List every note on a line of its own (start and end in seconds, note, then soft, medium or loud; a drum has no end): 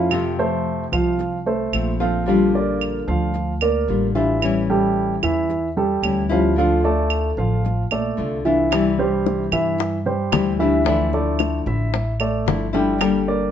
0.00 0.85 F2 medium
0.00 0.29 F3 medium
0.00 0.11 A3 medium
0.00 0.11 C#4 medium
0.00 0.10 E4 medium
0.00 0.29 F4 medium
0.00 0.29 F5 medium
0.11 1.18 C3 medium
0.11 1.19 F3 medium
0.11 1.19 A3 medium
0.11 1.19 C4 medium
0.11 1.20 F4 medium
0.11 claves medium
0.39 0.83 A3 medium
0.39 0.83 A4 medium
0.39 0.83 C5 medium
0.92 1.69 C2 medium
0.92 1.36 F3 medium
0.92 1.37 F4 medium
0.92 1.37 F5 medium
0.92 claves medium
1.19 muted nylon-string guitar stroke medium
1.46 1.90 A3 medium
1.46 1.90 A4 medium
1.46 1.91 C5 medium
1.73 3.01 A#1 medium
1.73 1.99 F3 soft
1.73 1.99 A3 medium
1.73 2.00 C4 medium
1.73 1.99 F4 medium
1.73 claves medium
2.00 2.22 F3 medium
2.00 2.26 F3 medium
2.00 2.27 A3 medium
2.00 2.27 C4 medium
2.00 2.26 F4 medium
2.00 2.22 F4 medium
2.00 2.23 F5 medium
2.26 3.33 D3 medium
2.26 2.49 F3 medium
2.26 3.34 G3 medium
2.26 3.33 D4 medium
2.26 2.49 F4 medium
2.26 3.34 F4 medium
2.26 2.49 F5 medium
2.54 2.98 A#3 medium
2.54 2.98 A#4 medium
2.54 2.99 D5 medium
2.81 claves medium
3.08 3.84 D2 medium
3.08 3.52 F3 medium
3.08 3.52 F4 medium
3.08 3.52 F5 medium
3.34 muted nylon-string guitar stroke medium
3.61 4.06 A#3 medium
3.61 4.06 A#4 medium
3.61 4.06 D5 medium
3.61 claves medium
3.88 5.16 A1 medium
3.88 4.14 D3 soft
3.88 4.14 G3 soft
3.88 4.15 D4 medium
3.88 4.14 F4 medium
4.15 4.59 E3 medium
4.15 4.41 G3 medium
4.15 4.41 D4 medium
4.15 4.59 E4 medium
4.15 4.41 F4 medium
4.15 4.60 E5 medium
4.42 5.48 E3 medium
4.42 5.48 G3 medium
4.42 5.49 C#4 medium
4.42 5.50 E4 medium
4.42 claves medium
4.70 5.13 G3 medium
4.70 5.13 G4 medium
4.70 5.14 A4 medium
5.23 5.99 E2 medium
5.23 5.67 E3 medium
5.23 5.67 E4 medium
5.23 5.67 E5 medium
5.23 claves medium
5.50 muted nylon-string guitar stroke medium
5.77 6.21 G3 medium
5.77 6.21 G4 medium
5.77 6.21 A4 medium
6.02 7.31 D2 medium
6.02 6.29 E3 soft
6.02 6.29 G3 medium
6.02 6.29 C#4 medium
6.02 6.28 E4 medium
6.02 claves medium
6.29 6.52 F3 medium
6.29 6.57 G3 medium
6.29 6.56 C#4 medium
6.29 6.56 E4 medium
6.29 6.53 F4 medium
6.29 6.53 F5 medium
6.56 7.63 D3 medium
6.56 6.79 F3 medium
6.56 7.64 A3 medium
6.56 7.65 D4 medium
6.56 6.79 F4 medium
6.56 7.65 F4 medium
6.56 6.80 F5 medium
6.84 7.28 A3 medium
6.84 7.28 A4 medium
6.84 7.28 D5 medium
7.10 claves medium
7.37 7.87 A1 medium
7.37 7.82 F3 medium
7.37 7.82 F4 medium
7.37 7.82 F5 medium
7.65 muted nylon-string guitar stroke medium
7.91 8.16 A#1 medium
7.91 8.35 A3 medium
7.91 8.36 A4 medium
7.91 8.36 D5 medium
7.91 claves medium
8.17 9.46 C2 medium
8.17 8.43 D3 medium
8.17 8.44 A3 medium
8.17 8.44 D4 soft
8.17 8.44 F4 medium
8.45 8.89 E3 medium
8.45 8.72 A3 medium
8.45 8.71 D4 medium
8.45 8.89 E4 medium
8.45 8.71 F4 medium
8.45 8.89 E5 medium
8.71 9.77 C3 medium
8.71 9.78 E3 medium
8.71 9.78 G3 medium
8.71 9.79 D4 medium
8.71 9.79 E4 medium
8.71 high bongo medium
8.71 claves medium
8.99 9.43 G3 medium
8.99 9.43 G4 medium
8.99 9.43 C5 medium
9.26 high bongo medium
9.52 10.28 G2 medium
9.52 9.96 E3 medium
9.52 9.97 E4 medium
9.52 9.97 E5 medium
9.52 claves medium
9.78 muted nylon-string guitar stroke medium
9.78 high bongo medium
10.06 10.50 G3 medium
10.06 10.50 G4 medium
10.06 10.50 C5 medium
10.32 11.60 D2 medium
10.32 10.58 E3 medium
10.32 10.58 G3 medium
10.32 10.59 D4 medium
10.32 10.59 E4 medium
10.32 high bongo medium
10.32 low bongo medium
10.32 claves medium
10.59 10.81 E3 medium
10.59 10.85 E3 medium
10.59 10.86 G3 medium
10.59 10.86 D4 medium
10.59 10.82 E4 medium
10.59 10.85 E4 medium
10.59 10.82 E5 medium
10.84 11.91 D3 medium
10.84 11.08 E3 medium
10.84 11.92 F3 medium
10.84 11.95 A3 medium
10.84 11.95 D4 medium
10.84 11.09 E4 medium
10.84 11.93 E4 medium
10.84 11.09 E5 medium
10.84 high bongo medium
11.13 11.57 A3 medium
11.13 11.57 A4 medium
11.13 11.57 D5 medium
11.13 high bongo soft
11.39 high bongo medium
11.39 claves medium
11.66 12.43 A1 medium
11.66 12.11 E4 medium
11.66 12.11 E5 medium
11.66 high bongo soft
11.94 muted nylon-string guitar stroke medium
11.94 high bongo medium
12.20 12.64 A3 medium
12.20 12.64 A4 medium
12.20 12.64 D5 medium
12.20 claves medium
12.46 13.51 G1 medium
12.46 12.72 F3 medium
12.46 12.73 A3 medium
12.46 12.73 D4 medium
12.46 12.72 E4 medium
12.46 high bongo medium
12.46 low bongo medium
12.73 12.99 F3 medium
12.73 13.18 G3 medium
12.73 13.00 A3 medium
12.73 13.00 D4 medium
12.73 12.99 E4 medium
12.73 13.18 G4 medium
12.73 13.18 G5 medium
12.73 high bongo soft
12.98 13.51 D3 medium
12.98 13.51 G3 medium
12.98 13.51 A#3 medium
12.98 13.51 D4 medium
12.98 13.51 A4 medium
12.98 high bongo medium
12.98 claves medium
13.27 13.51 A#3 medium
13.27 13.51 D5 medium